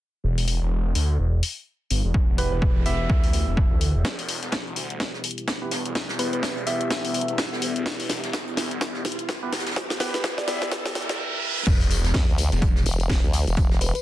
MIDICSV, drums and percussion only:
0, 0, Header, 1, 2, 480
1, 0, Start_track
1, 0, Key_signature, 1, "minor"
1, 0, Tempo, 476190
1, 241, Time_signature, 4, 2, 24, 8
1, 14131, End_track
2, 0, Start_track
2, 0, Title_t, "Drums"
2, 382, Note_on_c, 9, 46, 55
2, 481, Note_off_c, 9, 46, 0
2, 481, Note_on_c, 9, 46, 105
2, 581, Note_off_c, 9, 46, 0
2, 960, Note_on_c, 9, 46, 106
2, 1061, Note_off_c, 9, 46, 0
2, 1441, Note_on_c, 9, 46, 102
2, 1541, Note_off_c, 9, 46, 0
2, 1921, Note_on_c, 9, 46, 100
2, 2021, Note_off_c, 9, 46, 0
2, 2161, Note_on_c, 9, 36, 119
2, 2261, Note_off_c, 9, 36, 0
2, 2401, Note_on_c, 9, 46, 107
2, 2502, Note_off_c, 9, 46, 0
2, 2641, Note_on_c, 9, 36, 116
2, 2741, Note_off_c, 9, 36, 0
2, 2880, Note_on_c, 9, 46, 107
2, 2981, Note_off_c, 9, 46, 0
2, 3121, Note_on_c, 9, 36, 118
2, 3221, Note_off_c, 9, 36, 0
2, 3262, Note_on_c, 9, 46, 61
2, 3361, Note_off_c, 9, 46, 0
2, 3361, Note_on_c, 9, 46, 108
2, 3461, Note_off_c, 9, 46, 0
2, 3601, Note_on_c, 9, 36, 118
2, 3701, Note_off_c, 9, 36, 0
2, 3840, Note_on_c, 9, 46, 109
2, 3941, Note_off_c, 9, 46, 0
2, 4077, Note_on_c, 9, 42, 77
2, 4080, Note_off_c, 9, 42, 0
2, 4080, Note_on_c, 9, 36, 112
2, 4080, Note_on_c, 9, 38, 49
2, 4080, Note_on_c, 9, 42, 71
2, 4181, Note_off_c, 9, 36, 0
2, 4181, Note_off_c, 9, 38, 0
2, 4181, Note_off_c, 9, 42, 0
2, 4222, Note_on_c, 9, 46, 60
2, 4314, Note_on_c, 9, 42, 62
2, 4320, Note_off_c, 9, 46, 0
2, 4320, Note_on_c, 9, 46, 107
2, 4415, Note_off_c, 9, 42, 0
2, 4421, Note_off_c, 9, 46, 0
2, 4460, Note_on_c, 9, 38, 40
2, 4462, Note_on_c, 9, 42, 54
2, 4554, Note_off_c, 9, 42, 0
2, 4554, Note_on_c, 9, 42, 93
2, 4556, Note_off_c, 9, 38, 0
2, 4556, Note_on_c, 9, 38, 107
2, 4560, Note_off_c, 9, 38, 0
2, 4560, Note_off_c, 9, 42, 0
2, 4560, Note_on_c, 9, 36, 118
2, 4560, Note_on_c, 9, 38, 52
2, 4560, Note_on_c, 9, 42, 69
2, 4661, Note_off_c, 9, 36, 0
2, 4661, Note_off_c, 9, 38, 0
2, 4661, Note_off_c, 9, 42, 0
2, 4704, Note_on_c, 9, 42, 42
2, 4797, Note_off_c, 9, 42, 0
2, 4797, Note_on_c, 9, 42, 68
2, 4801, Note_on_c, 9, 46, 105
2, 4898, Note_off_c, 9, 42, 0
2, 4901, Note_off_c, 9, 46, 0
2, 4942, Note_on_c, 9, 42, 53
2, 5040, Note_off_c, 9, 42, 0
2, 5040, Note_on_c, 9, 36, 116
2, 5040, Note_on_c, 9, 38, 51
2, 5040, Note_on_c, 9, 42, 67
2, 5041, Note_off_c, 9, 42, 0
2, 5041, Note_on_c, 9, 42, 76
2, 5141, Note_off_c, 9, 36, 0
2, 5141, Note_off_c, 9, 38, 0
2, 5142, Note_off_c, 9, 42, 0
2, 5180, Note_on_c, 9, 38, 34
2, 5280, Note_on_c, 9, 46, 104
2, 5281, Note_off_c, 9, 38, 0
2, 5281, Note_on_c, 9, 42, 71
2, 5351, Note_off_c, 9, 42, 0
2, 5351, Note_on_c, 9, 42, 67
2, 5381, Note_off_c, 9, 46, 0
2, 5422, Note_off_c, 9, 42, 0
2, 5422, Note_on_c, 9, 42, 56
2, 5517, Note_off_c, 9, 42, 0
2, 5517, Note_on_c, 9, 42, 93
2, 5520, Note_off_c, 9, 42, 0
2, 5520, Note_on_c, 9, 36, 117
2, 5520, Note_on_c, 9, 38, 54
2, 5520, Note_on_c, 9, 42, 69
2, 5522, Note_off_c, 9, 38, 0
2, 5522, Note_on_c, 9, 38, 110
2, 5621, Note_off_c, 9, 36, 0
2, 5621, Note_off_c, 9, 42, 0
2, 5623, Note_off_c, 9, 38, 0
2, 5757, Note_on_c, 9, 42, 64
2, 5760, Note_on_c, 9, 46, 102
2, 5761, Note_on_c, 9, 38, 60
2, 5857, Note_off_c, 9, 42, 0
2, 5861, Note_off_c, 9, 46, 0
2, 5862, Note_off_c, 9, 38, 0
2, 5902, Note_on_c, 9, 42, 56
2, 6000, Note_off_c, 9, 42, 0
2, 6000, Note_on_c, 9, 36, 115
2, 6000, Note_on_c, 9, 38, 60
2, 6000, Note_on_c, 9, 42, 87
2, 6101, Note_off_c, 9, 36, 0
2, 6101, Note_off_c, 9, 38, 0
2, 6101, Note_off_c, 9, 42, 0
2, 6137, Note_on_c, 9, 38, 55
2, 6238, Note_off_c, 9, 38, 0
2, 6240, Note_on_c, 9, 46, 105
2, 6247, Note_on_c, 9, 42, 65
2, 6341, Note_off_c, 9, 46, 0
2, 6348, Note_off_c, 9, 42, 0
2, 6381, Note_on_c, 9, 42, 53
2, 6480, Note_off_c, 9, 42, 0
2, 6480, Note_on_c, 9, 36, 121
2, 6480, Note_on_c, 9, 38, 62
2, 6480, Note_on_c, 9, 42, 68
2, 6485, Note_off_c, 9, 42, 0
2, 6485, Note_on_c, 9, 42, 85
2, 6581, Note_off_c, 9, 36, 0
2, 6581, Note_off_c, 9, 38, 0
2, 6586, Note_off_c, 9, 42, 0
2, 6620, Note_on_c, 9, 42, 42
2, 6717, Note_off_c, 9, 42, 0
2, 6717, Note_on_c, 9, 42, 71
2, 6721, Note_on_c, 9, 46, 110
2, 6818, Note_off_c, 9, 42, 0
2, 6821, Note_off_c, 9, 46, 0
2, 6862, Note_on_c, 9, 42, 49
2, 6960, Note_on_c, 9, 36, 123
2, 6961, Note_off_c, 9, 42, 0
2, 6961, Note_on_c, 9, 38, 64
2, 6961, Note_on_c, 9, 42, 85
2, 7061, Note_off_c, 9, 36, 0
2, 7061, Note_off_c, 9, 38, 0
2, 7061, Note_off_c, 9, 42, 0
2, 7102, Note_on_c, 9, 46, 66
2, 7198, Note_on_c, 9, 42, 62
2, 7201, Note_off_c, 9, 46, 0
2, 7201, Note_on_c, 9, 46, 112
2, 7272, Note_off_c, 9, 42, 0
2, 7272, Note_on_c, 9, 42, 66
2, 7302, Note_off_c, 9, 46, 0
2, 7342, Note_off_c, 9, 42, 0
2, 7342, Note_on_c, 9, 42, 56
2, 7437, Note_off_c, 9, 42, 0
2, 7437, Note_on_c, 9, 42, 96
2, 7441, Note_off_c, 9, 42, 0
2, 7441, Note_on_c, 9, 36, 123
2, 7441, Note_on_c, 9, 38, 70
2, 7441, Note_on_c, 9, 42, 69
2, 7444, Note_off_c, 9, 38, 0
2, 7444, Note_on_c, 9, 38, 119
2, 7541, Note_off_c, 9, 36, 0
2, 7542, Note_off_c, 9, 42, 0
2, 7544, Note_off_c, 9, 38, 0
2, 7590, Note_on_c, 9, 38, 53
2, 7680, Note_on_c, 9, 46, 111
2, 7681, Note_on_c, 9, 42, 71
2, 7691, Note_off_c, 9, 38, 0
2, 7781, Note_off_c, 9, 46, 0
2, 7782, Note_off_c, 9, 42, 0
2, 7822, Note_on_c, 9, 42, 54
2, 7921, Note_off_c, 9, 42, 0
2, 7921, Note_on_c, 9, 36, 125
2, 7921, Note_on_c, 9, 38, 73
2, 7921, Note_on_c, 9, 42, 66
2, 7926, Note_off_c, 9, 42, 0
2, 7926, Note_on_c, 9, 42, 82
2, 8021, Note_off_c, 9, 36, 0
2, 8021, Note_off_c, 9, 38, 0
2, 8026, Note_off_c, 9, 42, 0
2, 8062, Note_on_c, 9, 46, 63
2, 8161, Note_off_c, 9, 46, 0
2, 8161, Note_on_c, 9, 38, 74
2, 8161, Note_on_c, 9, 42, 73
2, 8161, Note_on_c, 9, 46, 109
2, 8261, Note_off_c, 9, 38, 0
2, 8261, Note_off_c, 9, 46, 0
2, 8262, Note_off_c, 9, 42, 0
2, 8298, Note_on_c, 9, 38, 40
2, 8302, Note_on_c, 9, 42, 52
2, 8399, Note_off_c, 9, 38, 0
2, 8399, Note_off_c, 9, 42, 0
2, 8399, Note_on_c, 9, 38, 119
2, 8399, Note_on_c, 9, 42, 85
2, 8401, Note_off_c, 9, 38, 0
2, 8401, Note_off_c, 9, 42, 0
2, 8401, Note_on_c, 9, 36, 124
2, 8401, Note_on_c, 9, 38, 79
2, 8401, Note_on_c, 9, 42, 67
2, 8501, Note_off_c, 9, 36, 0
2, 8502, Note_off_c, 9, 38, 0
2, 8502, Note_off_c, 9, 42, 0
2, 8541, Note_on_c, 9, 42, 49
2, 8641, Note_off_c, 9, 42, 0
2, 8641, Note_on_c, 9, 38, 83
2, 8641, Note_on_c, 9, 42, 67
2, 8641, Note_on_c, 9, 46, 112
2, 8742, Note_off_c, 9, 38, 0
2, 8742, Note_off_c, 9, 42, 0
2, 8742, Note_off_c, 9, 46, 0
2, 8783, Note_on_c, 9, 42, 49
2, 8880, Note_off_c, 9, 42, 0
2, 8880, Note_on_c, 9, 42, 86
2, 8881, Note_off_c, 9, 42, 0
2, 8881, Note_on_c, 9, 36, 126
2, 8881, Note_on_c, 9, 38, 78
2, 8881, Note_on_c, 9, 42, 65
2, 8981, Note_off_c, 9, 36, 0
2, 8982, Note_off_c, 9, 38, 0
2, 8982, Note_off_c, 9, 42, 0
2, 9018, Note_on_c, 9, 38, 37
2, 9119, Note_off_c, 9, 38, 0
2, 9119, Note_on_c, 9, 42, 67
2, 9121, Note_on_c, 9, 38, 88
2, 9121, Note_on_c, 9, 46, 114
2, 9192, Note_off_c, 9, 42, 0
2, 9192, Note_on_c, 9, 42, 66
2, 9222, Note_off_c, 9, 38, 0
2, 9222, Note_off_c, 9, 46, 0
2, 9263, Note_off_c, 9, 42, 0
2, 9263, Note_on_c, 9, 42, 55
2, 9361, Note_on_c, 9, 36, 126
2, 9362, Note_off_c, 9, 42, 0
2, 9362, Note_on_c, 9, 38, 122
2, 9362, Note_on_c, 9, 42, 66
2, 9366, Note_off_c, 9, 42, 0
2, 9366, Note_on_c, 9, 42, 89
2, 9462, Note_off_c, 9, 36, 0
2, 9463, Note_off_c, 9, 38, 0
2, 9467, Note_off_c, 9, 42, 0
2, 9599, Note_on_c, 9, 42, 70
2, 9602, Note_on_c, 9, 38, 90
2, 9602, Note_on_c, 9, 46, 112
2, 9606, Note_off_c, 9, 38, 0
2, 9606, Note_on_c, 9, 38, 91
2, 9665, Note_off_c, 9, 38, 0
2, 9665, Note_on_c, 9, 38, 93
2, 9673, Note_off_c, 9, 42, 0
2, 9673, Note_on_c, 9, 42, 69
2, 9703, Note_off_c, 9, 46, 0
2, 9742, Note_off_c, 9, 38, 0
2, 9742, Note_off_c, 9, 42, 0
2, 9742, Note_on_c, 9, 38, 90
2, 9742, Note_on_c, 9, 42, 61
2, 9743, Note_off_c, 9, 42, 0
2, 9743, Note_on_c, 9, 42, 55
2, 9788, Note_off_c, 9, 42, 0
2, 9788, Note_on_c, 9, 42, 71
2, 9798, Note_off_c, 9, 38, 0
2, 9798, Note_on_c, 9, 38, 84
2, 9841, Note_on_c, 9, 36, 120
2, 9842, Note_off_c, 9, 38, 0
2, 9842, Note_off_c, 9, 42, 0
2, 9842, Note_on_c, 9, 38, 93
2, 9842, Note_on_c, 9, 42, 64
2, 9847, Note_off_c, 9, 42, 0
2, 9847, Note_on_c, 9, 42, 91
2, 9942, Note_off_c, 9, 36, 0
2, 9942, Note_off_c, 9, 38, 0
2, 9948, Note_off_c, 9, 42, 0
2, 9976, Note_on_c, 9, 38, 53
2, 9983, Note_off_c, 9, 38, 0
2, 9983, Note_on_c, 9, 38, 80
2, 10081, Note_off_c, 9, 38, 0
2, 10081, Note_on_c, 9, 38, 94
2, 10081, Note_on_c, 9, 46, 113
2, 10084, Note_on_c, 9, 42, 70
2, 10182, Note_off_c, 9, 38, 0
2, 10182, Note_off_c, 9, 46, 0
2, 10185, Note_off_c, 9, 42, 0
2, 10223, Note_on_c, 9, 38, 83
2, 10223, Note_on_c, 9, 42, 50
2, 10321, Note_off_c, 9, 38, 0
2, 10321, Note_off_c, 9, 42, 0
2, 10321, Note_on_c, 9, 36, 123
2, 10321, Note_on_c, 9, 38, 99
2, 10321, Note_on_c, 9, 42, 66
2, 10325, Note_off_c, 9, 42, 0
2, 10325, Note_on_c, 9, 42, 89
2, 10328, Note_off_c, 9, 38, 0
2, 10328, Note_on_c, 9, 38, 123
2, 10422, Note_off_c, 9, 36, 0
2, 10426, Note_off_c, 9, 42, 0
2, 10428, Note_off_c, 9, 38, 0
2, 10462, Note_on_c, 9, 38, 88
2, 10464, Note_on_c, 9, 42, 40
2, 10559, Note_off_c, 9, 42, 0
2, 10559, Note_on_c, 9, 42, 74
2, 10561, Note_off_c, 9, 38, 0
2, 10561, Note_on_c, 9, 38, 101
2, 10561, Note_on_c, 9, 46, 109
2, 10660, Note_off_c, 9, 42, 0
2, 10662, Note_off_c, 9, 38, 0
2, 10662, Note_off_c, 9, 46, 0
2, 10703, Note_on_c, 9, 38, 85
2, 10703, Note_on_c, 9, 42, 49
2, 10801, Note_off_c, 9, 38, 0
2, 10801, Note_off_c, 9, 42, 0
2, 10801, Note_on_c, 9, 36, 125
2, 10801, Note_on_c, 9, 38, 100
2, 10801, Note_on_c, 9, 42, 62
2, 10901, Note_off_c, 9, 36, 0
2, 10902, Note_off_c, 9, 38, 0
2, 10902, Note_off_c, 9, 42, 0
2, 10942, Note_on_c, 9, 38, 94
2, 10942, Note_on_c, 9, 46, 66
2, 11037, Note_on_c, 9, 42, 75
2, 11041, Note_off_c, 9, 38, 0
2, 11041, Note_off_c, 9, 46, 0
2, 11041, Note_on_c, 9, 38, 106
2, 11041, Note_on_c, 9, 46, 114
2, 11112, Note_off_c, 9, 42, 0
2, 11112, Note_on_c, 9, 42, 62
2, 11142, Note_off_c, 9, 38, 0
2, 11142, Note_off_c, 9, 46, 0
2, 11183, Note_off_c, 9, 42, 0
2, 11183, Note_on_c, 9, 38, 96
2, 11183, Note_on_c, 9, 42, 53
2, 11284, Note_off_c, 9, 38, 0
2, 11284, Note_off_c, 9, 42, 0
2, 11758, Note_on_c, 9, 42, 82
2, 11761, Note_on_c, 9, 36, 116
2, 11762, Note_off_c, 9, 42, 0
2, 11762, Note_on_c, 9, 42, 70
2, 11762, Note_on_c, 9, 49, 111
2, 11767, Note_on_c, 9, 54, 46
2, 11862, Note_off_c, 9, 36, 0
2, 11863, Note_off_c, 9, 42, 0
2, 11863, Note_off_c, 9, 49, 0
2, 11868, Note_off_c, 9, 54, 0
2, 11903, Note_on_c, 9, 46, 60
2, 11908, Note_on_c, 9, 54, 22
2, 12001, Note_off_c, 9, 46, 0
2, 12001, Note_on_c, 9, 46, 105
2, 12007, Note_off_c, 9, 54, 0
2, 12007, Note_on_c, 9, 54, 82
2, 12010, Note_on_c, 9, 42, 71
2, 12102, Note_off_c, 9, 46, 0
2, 12107, Note_off_c, 9, 54, 0
2, 12111, Note_off_c, 9, 42, 0
2, 12141, Note_on_c, 9, 38, 44
2, 12143, Note_on_c, 9, 42, 56
2, 12148, Note_on_c, 9, 54, 34
2, 12235, Note_off_c, 9, 38, 0
2, 12235, Note_on_c, 9, 38, 109
2, 12237, Note_off_c, 9, 42, 0
2, 12237, Note_on_c, 9, 42, 90
2, 12241, Note_on_c, 9, 36, 117
2, 12242, Note_off_c, 9, 42, 0
2, 12242, Note_on_c, 9, 42, 74
2, 12245, Note_off_c, 9, 38, 0
2, 12245, Note_on_c, 9, 38, 126
2, 12249, Note_off_c, 9, 54, 0
2, 12342, Note_off_c, 9, 36, 0
2, 12343, Note_off_c, 9, 42, 0
2, 12346, Note_off_c, 9, 38, 0
2, 12386, Note_on_c, 9, 42, 48
2, 12388, Note_on_c, 9, 54, 23
2, 12482, Note_on_c, 9, 46, 108
2, 12486, Note_off_c, 9, 42, 0
2, 12486, Note_on_c, 9, 42, 66
2, 12487, Note_off_c, 9, 54, 0
2, 12487, Note_on_c, 9, 54, 82
2, 12583, Note_off_c, 9, 46, 0
2, 12587, Note_off_c, 9, 42, 0
2, 12588, Note_off_c, 9, 54, 0
2, 12623, Note_on_c, 9, 42, 54
2, 12628, Note_on_c, 9, 54, 33
2, 12721, Note_off_c, 9, 42, 0
2, 12721, Note_on_c, 9, 36, 122
2, 12721, Note_on_c, 9, 42, 69
2, 12724, Note_off_c, 9, 42, 0
2, 12724, Note_on_c, 9, 42, 80
2, 12726, Note_off_c, 9, 54, 0
2, 12726, Note_on_c, 9, 54, 46
2, 12822, Note_off_c, 9, 36, 0
2, 12825, Note_off_c, 9, 42, 0
2, 12827, Note_off_c, 9, 54, 0
2, 12859, Note_on_c, 9, 38, 41
2, 12868, Note_on_c, 9, 54, 22
2, 12957, Note_on_c, 9, 42, 73
2, 12960, Note_off_c, 9, 38, 0
2, 12961, Note_on_c, 9, 46, 109
2, 12967, Note_off_c, 9, 54, 0
2, 12967, Note_on_c, 9, 54, 80
2, 13032, Note_off_c, 9, 42, 0
2, 13032, Note_on_c, 9, 42, 68
2, 13062, Note_off_c, 9, 46, 0
2, 13067, Note_off_c, 9, 54, 0
2, 13103, Note_off_c, 9, 42, 0
2, 13103, Note_on_c, 9, 42, 57
2, 13108, Note_on_c, 9, 54, 36
2, 13201, Note_off_c, 9, 42, 0
2, 13201, Note_on_c, 9, 36, 121
2, 13201, Note_on_c, 9, 42, 70
2, 13202, Note_off_c, 9, 42, 0
2, 13202, Note_on_c, 9, 38, 123
2, 13202, Note_on_c, 9, 42, 90
2, 13205, Note_off_c, 9, 38, 0
2, 13205, Note_on_c, 9, 38, 125
2, 13208, Note_off_c, 9, 54, 0
2, 13301, Note_off_c, 9, 36, 0
2, 13302, Note_off_c, 9, 42, 0
2, 13306, Note_off_c, 9, 38, 0
2, 13348, Note_on_c, 9, 54, 22
2, 13441, Note_on_c, 9, 46, 106
2, 13443, Note_on_c, 9, 38, 53
2, 13446, Note_off_c, 9, 54, 0
2, 13446, Note_on_c, 9, 42, 76
2, 13446, Note_on_c, 9, 54, 79
2, 13542, Note_off_c, 9, 46, 0
2, 13544, Note_off_c, 9, 38, 0
2, 13547, Note_off_c, 9, 42, 0
2, 13547, Note_off_c, 9, 54, 0
2, 13582, Note_on_c, 9, 42, 56
2, 13588, Note_on_c, 9, 54, 35
2, 13673, Note_off_c, 9, 42, 0
2, 13673, Note_on_c, 9, 42, 90
2, 13681, Note_off_c, 9, 42, 0
2, 13681, Note_on_c, 9, 36, 123
2, 13681, Note_on_c, 9, 42, 70
2, 13686, Note_off_c, 9, 54, 0
2, 13686, Note_on_c, 9, 54, 44
2, 13781, Note_off_c, 9, 36, 0
2, 13782, Note_off_c, 9, 42, 0
2, 13787, Note_off_c, 9, 54, 0
2, 13822, Note_on_c, 9, 38, 51
2, 13827, Note_on_c, 9, 54, 21
2, 13919, Note_on_c, 9, 42, 73
2, 13921, Note_on_c, 9, 46, 117
2, 13923, Note_off_c, 9, 38, 0
2, 13926, Note_off_c, 9, 54, 0
2, 13926, Note_on_c, 9, 54, 79
2, 14020, Note_off_c, 9, 42, 0
2, 14022, Note_off_c, 9, 46, 0
2, 14027, Note_off_c, 9, 54, 0
2, 14062, Note_on_c, 9, 42, 54
2, 14067, Note_on_c, 9, 54, 34
2, 14131, Note_off_c, 9, 42, 0
2, 14131, Note_off_c, 9, 54, 0
2, 14131, End_track
0, 0, End_of_file